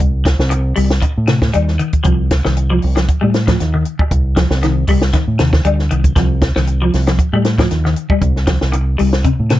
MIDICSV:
0, 0, Header, 1, 5, 480
1, 0, Start_track
1, 0, Time_signature, 4, 2, 24, 8
1, 0, Tempo, 514139
1, 8959, End_track
2, 0, Start_track
2, 0, Title_t, "Clean electric guitar"
2, 0, Program_c, 0, 27
2, 706, Note_on_c, 0, 55, 68
2, 904, Note_off_c, 0, 55, 0
2, 1189, Note_on_c, 0, 48, 77
2, 1385, Note_off_c, 0, 48, 0
2, 1433, Note_on_c, 0, 55, 84
2, 1627, Note_off_c, 0, 55, 0
2, 1675, Note_on_c, 0, 51, 85
2, 1869, Note_off_c, 0, 51, 0
2, 1900, Note_on_c, 0, 53, 90
2, 2100, Note_off_c, 0, 53, 0
2, 2283, Note_on_c, 0, 51, 74
2, 2477, Note_off_c, 0, 51, 0
2, 2523, Note_on_c, 0, 53, 80
2, 2717, Note_off_c, 0, 53, 0
2, 2762, Note_on_c, 0, 53, 76
2, 2956, Note_off_c, 0, 53, 0
2, 2998, Note_on_c, 0, 55, 70
2, 3194, Note_off_c, 0, 55, 0
2, 3243, Note_on_c, 0, 53, 73
2, 3437, Note_off_c, 0, 53, 0
2, 3490, Note_on_c, 0, 51, 77
2, 3681, Note_off_c, 0, 51, 0
2, 4073, Note_on_c, 0, 53, 71
2, 4267, Note_off_c, 0, 53, 0
2, 4322, Note_on_c, 0, 51, 83
2, 4513, Note_off_c, 0, 51, 0
2, 4563, Note_on_c, 0, 55, 75
2, 4754, Note_off_c, 0, 55, 0
2, 4797, Note_on_c, 0, 51, 85
2, 4990, Note_off_c, 0, 51, 0
2, 5033, Note_on_c, 0, 48, 73
2, 5227, Note_off_c, 0, 48, 0
2, 5274, Note_on_c, 0, 55, 82
2, 5468, Note_off_c, 0, 55, 0
2, 5515, Note_on_c, 0, 51, 82
2, 5709, Note_off_c, 0, 51, 0
2, 5753, Note_on_c, 0, 53, 87
2, 5947, Note_off_c, 0, 53, 0
2, 6126, Note_on_c, 0, 51, 75
2, 6319, Note_off_c, 0, 51, 0
2, 6365, Note_on_c, 0, 53, 74
2, 6558, Note_off_c, 0, 53, 0
2, 6604, Note_on_c, 0, 53, 77
2, 6798, Note_off_c, 0, 53, 0
2, 6848, Note_on_c, 0, 55, 70
2, 7040, Note_off_c, 0, 55, 0
2, 7087, Note_on_c, 0, 53, 68
2, 7279, Note_off_c, 0, 53, 0
2, 7329, Note_on_c, 0, 51, 80
2, 7521, Note_off_c, 0, 51, 0
2, 7562, Note_on_c, 0, 55, 69
2, 7756, Note_off_c, 0, 55, 0
2, 7908, Note_on_c, 0, 53, 68
2, 8104, Note_off_c, 0, 53, 0
2, 8386, Note_on_c, 0, 55, 77
2, 8583, Note_off_c, 0, 55, 0
2, 8631, Note_on_c, 0, 48, 89
2, 8826, Note_off_c, 0, 48, 0
2, 8873, Note_on_c, 0, 48, 85
2, 8959, Note_off_c, 0, 48, 0
2, 8959, End_track
3, 0, Start_track
3, 0, Title_t, "Fingered electric bass"
3, 0, Program_c, 1, 33
3, 2, Note_on_c, 1, 36, 91
3, 325, Note_off_c, 1, 36, 0
3, 364, Note_on_c, 1, 36, 103
3, 675, Note_off_c, 1, 36, 0
3, 721, Note_on_c, 1, 36, 88
3, 931, Note_off_c, 1, 36, 0
3, 1097, Note_on_c, 1, 45, 76
3, 1402, Note_off_c, 1, 45, 0
3, 1451, Note_on_c, 1, 39, 98
3, 1657, Note_off_c, 1, 39, 0
3, 1920, Note_on_c, 1, 36, 97
3, 2244, Note_off_c, 1, 36, 0
3, 2300, Note_on_c, 1, 36, 89
3, 2603, Note_off_c, 1, 36, 0
3, 2647, Note_on_c, 1, 36, 86
3, 2855, Note_off_c, 1, 36, 0
3, 3016, Note_on_c, 1, 45, 83
3, 3322, Note_off_c, 1, 45, 0
3, 3369, Note_on_c, 1, 39, 101
3, 3576, Note_off_c, 1, 39, 0
3, 3842, Note_on_c, 1, 36, 90
3, 4165, Note_off_c, 1, 36, 0
3, 4206, Note_on_c, 1, 36, 97
3, 4516, Note_off_c, 1, 36, 0
3, 4560, Note_on_c, 1, 36, 81
3, 4771, Note_off_c, 1, 36, 0
3, 4925, Note_on_c, 1, 45, 71
3, 5024, Note_off_c, 1, 45, 0
3, 5042, Note_on_c, 1, 39, 83
3, 5256, Note_off_c, 1, 39, 0
3, 5275, Note_on_c, 1, 38, 88
3, 5492, Note_off_c, 1, 38, 0
3, 5524, Note_on_c, 1, 36, 75
3, 5737, Note_off_c, 1, 36, 0
3, 5750, Note_on_c, 1, 36, 86
3, 6078, Note_off_c, 1, 36, 0
3, 6124, Note_on_c, 1, 36, 93
3, 6435, Note_off_c, 1, 36, 0
3, 6479, Note_on_c, 1, 36, 89
3, 6690, Note_off_c, 1, 36, 0
3, 6842, Note_on_c, 1, 45, 85
3, 7153, Note_off_c, 1, 45, 0
3, 7202, Note_on_c, 1, 39, 99
3, 7412, Note_off_c, 1, 39, 0
3, 7673, Note_on_c, 1, 36, 101
3, 8000, Note_off_c, 1, 36, 0
3, 8052, Note_on_c, 1, 36, 92
3, 8359, Note_off_c, 1, 36, 0
3, 8405, Note_on_c, 1, 36, 86
3, 8613, Note_off_c, 1, 36, 0
3, 8772, Note_on_c, 1, 45, 83
3, 8959, Note_off_c, 1, 45, 0
3, 8959, End_track
4, 0, Start_track
4, 0, Title_t, "Muted clean electric guitar strokes"
4, 234, Note_on_c, 9, 29, 72
4, 328, Note_off_c, 9, 29, 0
4, 469, Note_on_c, 9, 29, 92
4, 562, Note_off_c, 9, 29, 0
4, 949, Note_on_c, 9, 29, 87
4, 1042, Note_off_c, 9, 29, 0
4, 3728, Note_on_c, 9, 29, 65
4, 3822, Note_off_c, 9, 29, 0
4, 8145, Note_on_c, 9, 29, 90
4, 8238, Note_off_c, 9, 29, 0
4, 8959, End_track
5, 0, Start_track
5, 0, Title_t, "Drums"
5, 0, Note_on_c, 9, 36, 88
5, 0, Note_on_c, 9, 42, 72
5, 91, Note_off_c, 9, 36, 0
5, 91, Note_off_c, 9, 42, 0
5, 238, Note_on_c, 9, 36, 74
5, 241, Note_on_c, 9, 42, 64
5, 246, Note_on_c, 9, 38, 77
5, 331, Note_off_c, 9, 36, 0
5, 335, Note_off_c, 9, 42, 0
5, 339, Note_off_c, 9, 38, 0
5, 371, Note_on_c, 9, 38, 74
5, 465, Note_off_c, 9, 38, 0
5, 474, Note_on_c, 9, 42, 71
5, 567, Note_off_c, 9, 42, 0
5, 711, Note_on_c, 9, 46, 68
5, 804, Note_off_c, 9, 46, 0
5, 845, Note_on_c, 9, 38, 74
5, 938, Note_off_c, 9, 38, 0
5, 952, Note_on_c, 9, 42, 73
5, 955, Note_on_c, 9, 36, 74
5, 1046, Note_off_c, 9, 42, 0
5, 1048, Note_off_c, 9, 36, 0
5, 1190, Note_on_c, 9, 42, 54
5, 1195, Note_on_c, 9, 38, 76
5, 1284, Note_off_c, 9, 42, 0
5, 1288, Note_off_c, 9, 38, 0
5, 1324, Note_on_c, 9, 36, 64
5, 1324, Note_on_c, 9, 38, 74
5, 1417, Note_off_c, 9, 36, 0
5, 1417, Note_off_c, 9, 38, 0
5, 1433, Note_on_c, 9, 42, 72
5, 1526, Note_off_c, 9, 42, 0
5, 1567, Note_on_c, 9, 38, 25
5, 1661, Note_off_c, 9, 38, 0
5, 1673, Note_on_c, 9, 42, 50
5, 1767, Note_off_c, 9, 42, 0
5, 1799, Note_on_c, 9, 42, 56
5, 1804, Note_on_c, 9, 36, 66
5, 1892, Note_off_c, 9, 42, 0
5, 1898, Note_off_c, 9, 36, 0
5, 1907, Note_on_c, 9, 42, 67
5, 1916, Note_on_c, 9, 36, 86
5, 2000, Note_off_c, 9, 42, 0
5, 2009, Note_off_c, 9, 36, 0
5, 2153, Note_on_c, 9, 42, 57
5, 2157, Note_on_c, 9, 36, 67
5, 2158, Note_on_c, 9, 38, 81
5, 2246, Note_off_c, 9, 42, 0
5, 2250, Note_off_c, 9, 36, 0
5, 2251, Note_off_c, 9, 38, 0
5, 2287, Note_on_c, 9, 38, 70
5, 2380, Note_off_c, 9, 38, 0
5, 2396, Note_on_c, 9, 42, 64
5, 2489, Note_off_c, 9, 42, 0
5, 2634, Note_on_c, 9, 46, 71
5, 2728, Note_off_c, 9, 46, 0
5, 2768, Note_on_c, 9, 42, 50
5, 2772, Note_on_c, 9, 38, 70
5, 2861, Note_off_c, 9, 42, 0
5, 2866, Note_off_c, 9, 38, 0
5, 2879, Note_on_c, 9, 42, 65
5, 2881, Note_on_c, 9, 36, 76
5, 2973, Note_off_c, 9, 42, 0
5, 2975, Note_off_c, 9, 36, 0
5, 3118, Note_on_c, 9, 42, 51
5, 3123, Note_on_c, 9, 38, 73
5, 3211, Note_off_c, 9, 42, 0
5, 3216, Note_off_c, 9, 38, 0
5, 3246, Note_on_c, 9, 42, 54
5, 3248, Note_on_c, 9, 36, 69
5, 3251, Note_on_c, 9, 38, 74
5, 3339, Note_off_c, 9, 42, 0
5, 3341, Note_off_c, 9, 36, 0
5, 3344, Note_off_c, 9, 38, 0
5, 3362, Note_on_c, 9, 42, 68
5, 3367, Note_on_c, 9, 38, 29
5, 3455, Note_off_c, 9, 42, 0
5, 3460, Note_off_c, 9, 38, 0
5, 3596, Note_on_c, 9, 42, 54
5, 3690, Note_off_c, 9, 42, 0
5, 3728, Note_on_c, 9, 36, 74
5, 3822, Note_off_c, 9, 36, 0
5, 3839, Note_on_c, 9, 36, 89
5, 3840, Note_on_c, 9, 42, 70
5, 3933, Note_off_c, 9, 36, 0
5, 3933, Note_off_c, 9, 42, 0
5, 4076, Note_on_c, 9, 42, 59
5, 4079, Note_on_c, 9, 36, 71
5, 4081, Note_on_c, 9, 38, 84
5, 4170, Note_off_c, 9, 42, 0
5, 4172, Note_off_c, 9, 36, 0
5, 4174, Note_off_c, 9, 38, 0
5, 4208, Note_on_c, 9, 38, 73
5, 4301, Note_off_c, 9, 38, 0
5, 4321, Note_on_c, 9, 42, 72
5, 4325, Note_on_c, 9, 38, 30
5, 4414, Note_off_c, 9, 42, 0
5, 4419, Note_off_c, 9, 38, 0
5, 4550, Note_on_c, 9, 46, 65
5, 4555, Note_on_c, 9, 36, 66
5, 4644, Note_off_c, 9, 46, 0
5, 4648, Note_off_c, 9, 36, 0
5, 4683, Note_on_c, 9, 38, 76
5, 4776, Note_off_c, 9, 38, 0
5, 4791, Note_on_c, 9, 42, 74
5, 4794, Note_on_c, 9, 36, 79
5, 4796, Note_on_c, 9, 38, 31
5, 4884, Note_off_c, 9, 42, 0
5, 4887, Note_off_c, 9, 36, 0
5, 4889, Note_off_c, 9, 38, 0
5, 5029, Note_on_c, 9, 42, 51
5, 5034, Note_on_c, 9, 38, 75
5, 5122, Note_off_c, 9, 42, 0
5, 5127, Note_off_c, 9, 38, 0
5, 5161, Note_on_c, 9, 36, 67
5, 5164, Note_on_c, 9, 38, 76
5, 5255, Note_off_c, 9, 36, 0
5, 5257, Note_off_c, 9, 38, 0
5, 5271, Note_on_c, 9, 42, 71
5, 5364, Note_off_c, 9, 42, 0
5, 5407, Note_on_c, 9, 38, 27
5, 5501, Note_off_c, 9, 38, 0
5, 5516, Note_on_c, 9, 42, 58
5, 5609, Note_off_c, 9, 42, 0
5, 5641, Note_on_c, 9, 36, 72
5, 5642, Note_on_c, 9, 42, 55
5, 5734, Note_off_c, 9, 36, 0
5, 5735, Note_off_c, 9, 42, 0
5, 5751, Note_on_c, 9, 36, 93
5, 5754, Note_on_c, 9, 42, 69
5, 5758, Note_on_c, 9, 38, 31
5, 5845, Note_off_c, 9, 36, 0
5, 5847, Note_off_c, 9, 42, 0
5, 5852, Note_off_c, 9, 38, 0
5, 5989, Note_on_c, 9, 42, 56
5, 5991, Note_on_c, 9, 36, 72
5, 5994, Note_on_c, 9, 38, 83
5, 6082, Note_off_c, 9, 42, 0
5, 6084, Note_off_c, 9, 36, 0
5, 6087, Note_off_c, 9, 38, 0
5, 6123, Note_on_c, 9, 38, 72
5, 6217, Note_off_c, 9, 38, 0
5, 6230, Note_on_c, 9, 42, 67
5, 6323, Note_off_c, 9, 42, 0
5, 6474, Note_on_c, 9, 46, 65
5, 6478, Note_on_c, 9, 38, 30
5, 6567, Note_off_c, 9, 46, 0
5, 6572, Note_off_c, 9, 38, 0
5, 6601, Note_on_c, 9, 42, 53
5, 6605, Note_on_c, 9, 38, 72
5, 6694, Note_off_c, 9, 42, 0
5, 6699, Note_off_c, 9, 38, 0
5, 6710, Note_on_c, 9, 36, 81
5, 6712, Note_on_c, 9, 42, 66
5, 6803, Note_off_c, 9, 36, 0
5, 6805, Note_off_c, 9, 42, 0
5, 6951, Note_on_c, 9, 42, 53
5, 6956, Note_on_c, 9, 38, 68
5, 7045, Note_off_c, 9, 42, 0
5, 7049, Note_off_c, 9, 38, 0
5, 7080, Note_on_c, 9, 36, 67
5, 7084, Note_on_c, 9, 42, 48
5, 7089, Note_on_c, 9, 38, 77
5, 7174, Note_off_c, 9, 36, 0
5, 7178, Note_off_c, 9, 42, 0
5, 7182, Note_off_c, 9, 38, 0
5, 7196, Note_on_c, 9, 42, 63
5, 7200, Note_on_c, 9, 38, 30
5, 7289, Note_off_c, 9, 42, 0
5, 7294, Note_off_c, 9, 38, 0
5, 7330, Note_on_c, 9, 38, 27
5, 7423, Note_off_c, 9, 38, 0
5, 7433, Note_on_c, 9, 42, 51
5, 7526, Note_off_c, 9, 42, 0
5, 7560, Note_on_c, 9, 36, 72
5, 7653, Note_off_c, 9, 36, 0
5, 7670, Note_on_c, 9, 36, 94
5, 7670, Note_on_c, 9, 42, 67
5, 7763, Note_off_c, 9, 42, 0
5, 7764, Note_off_c, 9, 36, 0
5, 7808, Note_on_c, 9, 38, 29
5, 7901, Note_off_c, 9, 38, 0
5, 7907, Note_on_c, 9, 42, 61
5, 7911, Note_on_c, 9, 36, 78
5, 7912, Note_on_c, 9, 38, 82
5, 8001, Note_off_c, 9, 42, 0
5, 8004, Note_off_c, 9, 36, 0
5, 8006, Note_off_c, 9, 38, 0
5, 8041, Note_on_c, 9, 38, 65
5, 8135, Note_off_c, 9, 38, 0
5, 8152, Note_on_c, 9, 42, 70
5, 8246, Note_off_c, 9, 42, 0
5, 8393, Note_on_c, 9, 46, 66
5, 8487, Note_off_c, 9, 46, 0
5, 8523, Note_on_c, 9, 38, 79
5, 8616, Note_off_c, 9, 38, 0
5, 8630, Note_on_c, 9, 42, 80
5, 8632, Note_on_c, 9, 36, 78
5, 8723, Note_off_c, 9, 42, 0
5, 8725, Note_off_c, 9, 36, 0
5, 8868, Note_on_c, 9, 42, 57
5, 8873, Note_on_c, 9, 38, 73
5, 8959, Note_off_c, 9, 38, 0
5, 8959, Note_off_c, 9, 42, 0
5, 8959, End_track
0, 0, End_of_file